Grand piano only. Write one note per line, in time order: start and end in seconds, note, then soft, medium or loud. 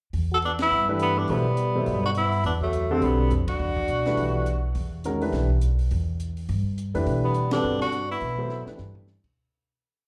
0.88 1.26 E3 medium
0.88 1.27 A3 medium
0.88 1.27 D4 medium
0.88 1.27 G4 medium
0.88 1.27 B4 medium
1.30 1.45 F#3 medium
1.30 1.45 B3 soft
1.30 1.45 E4 medium
1.30 1.45 A4 medium
1.30 1.45 C5 medium
1.75 2.13 B2 soft
1.75 2.13 F#3 medium
1.75 2.13 E4 medium
1.75 2.13 A4 medium
1.75 2.14 C5 medium
2.91 3.29 D3 medium
2.91 3.29 G3 medium
2.91 3.29 C4 medium
2.91 3.29 F#4 medium
2.91 3.29 A4 medium
4.06 4.44 E3 medium
4.06 4.44 G3 soft
4.06 4.44 A3 soft
4.06 4.44 D4 soft
4.06 4.44 B4 medium
5.05 5.20 D#3 soft
5.05 5.20 G#3 soft
5.05 5.20 C#4 medium
5.05 5.20 F#4 medium
5.05 5.20 A#4 medium
5.22 5.47 E3 medium
5.22 5.47 A3 soft
5.22 5.47 D4 soft
5.22 5.47 G4 soft
5.22 5.47 B4 medium
6.94 7.33 E3 medium
6.94 7.33 A3 medium
6.94 7.33 D4 medium
6.94 7.33 G4 soft
6.94 7.33 B4 medium
7.52 7.90 D3 medium
7.52 7.90 G3 medium
7.52 7.90 C4 medium
7.52 7.90 F#4 medium
7.52 7.90 A4 medium
8.38 8.65 F#3 medium
8.38 8.65 B3 medium
8.38 8.65 E4 medium
8.38 8.65 A4 medium
8.38 8.66 C5 medium
8.67 9.05 E3 medium
8.67 9.05 A3 soft
8.67 9.05 D4 soft
8.67 9.06 G4 soft
8.67 9.06 B4 medium